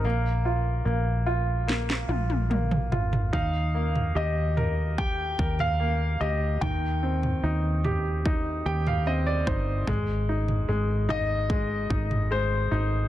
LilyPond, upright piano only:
\new Staff \with { instrumentName = "Upright piano" } { \time 4/4 \key ees \major \tempo 4 = 73 << { r1 | r1 | r2 r8 g''16 f''16 ees''16 d''16 c''8 | r1 | } \\ { bes8 f'8 bes8 f'8 bes8 f'8 bes8 f'8 | ees'8 bes8 g'8 bes'8 g'8 bes'8 bes8 g'8 | ees8 c'8 ees'8 g'8 ees'8 g'8 c'8 ees'8 | aes8 ees'8 aes8 ees'8 aes8 ees'8 aes8 ees'8 | } >> }